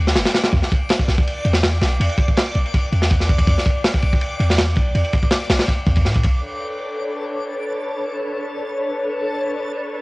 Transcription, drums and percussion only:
0.07 snare soft
0.16 snare medium
0.16 ride medium
0.25 snare loud
0.25 ride medium
0.34 snare loud
0.34 ride medium
0.44 snare loud
0.44 ride medium
0.52 kick loud
0.52 ride medium
0.62 snare soft
0.72 kick loud
0.72 ride medium
0.89 snare loud
0.89 ride medium
0.99 kick loud
1.08 snare soft
1.08 ride medium
1.18 kick loud
1.27 ride medium
1.45 ride medium
1.53 snare medium
1.63 snare loud
1.63 ride medium
1.81 snare medium
1.81 ride medium
2.01 ride medium
2.09 ride soft
2.18 kick loud
2.18 ride medium
2.28 kick medium
2.37 snare loud
2.37 ride medium
2.55 ride medium
2.66 ride soft
2.74 kick loud
2.74 ride medium
2.92 ride medium
3.02 snare soft
3.10 kick medium
3.10 ride medium
3.20 snare soft
3.29 kick medium
3.29 ride medium
3.38 kick medium
3.38 ride medium
3.47 kick loud
3.47 ride medium
3.58 snare soft
3.66 kick loud
3.66 ride medium
3.84 snare loud
3.84 ride medium
3.94 kick loud
4.02 ride medium
4.13 kick loud
4.21 ride medium
4.40 ride medium
4.50 snare medium
4.58 snare loud
4.58 ride medium
4.75 kick medium
4.75 ride medium
4.95 ride medium
5.04 ride soft
5.13 kick medium
5.13 ride medium
5.23 kick medium
5.31 snare loud
5.31 ride medium
5.50 snare loud
5.50 ride medium
5.59 snare loud
5.59 ride medium
5.68 kick medium
5.68 ride medium
5.86 kick medium
5.86 ride medium
5.96 kick medium
5.96 ride medium
6.05 snare soft
6.14 kick medium
6.14 ride medium
6.23 kick loud
6.23 ride medium

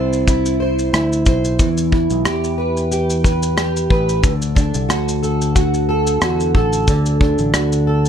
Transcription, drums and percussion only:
0.13 shaker soft
0.28 kick medium
0.28 shaker medium
0.46 shaker soft
0.79 shaker soft
0.94 cross-stick loud
0.94 shaker medium
1.13 shaker soft
1.26 kick medium
1.26 shaker soft
1.45 shaker soft
1.59 kick medium
1.59 shaker medium
1.77 shaker medium
1.92 kick medium
2.10 shaker soft
2.25 cross-stick loud
2.25 shaker medium
2.44 shaker medium
2.77 shaker soft
2.92 shaker medium
3.10 shaker soft
3.24 kick medium
3.24 shaker soft
3.43 shaker medium
3.58 cross-stick loud
3.58 shaker medium
3.77 shaker soft
3.90 kick medium
4.09 shaker soft
4.24 kick loud
4.24 shaker medium
4.42 shaker medium
4.56 kick medium
4.56 shaker soft
4.74 shaker medium
4.90 cross-stick loud
4.90 shaker medium
5.08 shaker medium
5.24 shaker soft
5.41 shaker soft
5.56 kick medium
5.56 shaker medium
5.74 shaker soft
6.07 shaker medium
6.22 cross-stick loud
6.22 shaker medium
6.40 shaker soft
6.55 kick medium
6.73 shaker soft
6.88 kick loud
6.88 shaker medium
7.06 shaker medium
7.21 kick medium
7.38 shaker soft
7.54 cross-stick loud
7.54 shaker medium
7.72 shaker soft
8.05 shaker soft

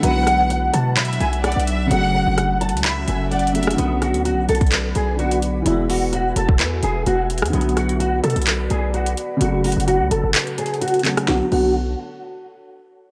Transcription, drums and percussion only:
0.03 closed hi-hat medium
0.27 cross-stick medium
0.27 closed hi-hat medium
0.50 closed hi-hat medium
0.74 closed hi-hat medium
0.97 clap loud
0.97 closed hi-hat medium
1.05 closed hi-hat medium
1.13 closed hi-hat medium
1.20 closed hi-hat medium
1.33 closed hi-hat medium
1.44 cross-stick medium
1.44 closed hi-hat medium
1.52 closed hi-hat medium
1.60 closed hi-hat medium
1.67 closed hi-hat medium
1.91 closed hi-hat medium
2.38 cross-stick medium
2.38 closed hi-hat medium
2.61 closed hi-hat medium
2.69 closed hi-hat medium
2.77 closed hi-hat medium
2.84 clap loud
2.84 closed hi-hat medium
3.08 closed hi-hat medium
3.32 closed hi-hat soft
3.39 closed hi-hat medium
3.47 closed hi-hat medium
3.55 closed hi-hat medium
3.55 open hi-hat medium
3.63 closed hi-hat medium
3.67 cross-stick loud
3.67 closed hi-hat medium
3.78 closed hi-hat medium
4.02 cross-stick medium
4.02 closed hi-hat medium
4.14 closed hi-hat medium
4.25 closed hi-hat medium
4.49 closed hi-hat medium
4.55 closed hi-hat medium
4.61 kick loud
4.61 closed hi-hat medium
4.67 closed hi-hat medium
4.72 clap loud
4.72 closed hi-hat medium
4.95 closed hi-hat medium
5.19 closed hi-hat soft
5.31 closed hi-hat medium
5.42 closed hi-hat medium
5.66 closed hi-hat medium
5.90 open hi-hat medium
6.13 closed hi-hat medium
6.36 closed hi-hat medium
6.49 kick medium
6.59 clap loud
6.59 closed hi-hat medium
6.83 closed hi-hat medium
7.06 closed hi-hat medium
7.30 closed hi-hat medium
7.38 closed hi-hat medium
7.42 cross-stick loud
7.42 closed hi-hat medium
7.53 closed hi-hat medium
7.61 closed hi-hat medium
7.69 closed hi-hat soft
7.77 cross-stick medium
7.77 closed hi-hat medium
7.89 closed hi-hat medium
8.00 closed hi-hat medium
8.24 closed hi-hat medium
8.30 closed hi-hat medium
8.36 closed hi-hat medium
8.42 closed hi-hat medium
8.47 clap loud
8.47 closed hi-hat medium
8.70 closed hi-hat medium
8.94 closed hi-hat soft
9.06 closed hi-hat medium
9.17 closed hi-hat medium
9.41 closed hi-hat medium
9.64 closed hi-hat soft
9.64 open hi-hat medium
9.72 closed hi-hat medium
9.80 closed hi-hat medium
9.88 closed hi-hat medium
10.11 closed hi-hat medium
10.35 clap loud
10.35 closed hi-hat medium
10.47 closed hi-hat soft
10.58 closed hi-hat medium
10.66 closed hi-hat medium
10.74 closed hi-hat soft
10.81 closed hi-hat medium
10.88 closed hi-hat medium
10.94 closed hi-hat medium
10.99 closed hi-hat soft
11.05 clap medium
11.05 closed hi-hat medium
11.17 cross-stick loud
11.17 closed hi-hat medium
11.28 snare medium
11.52 crash medium

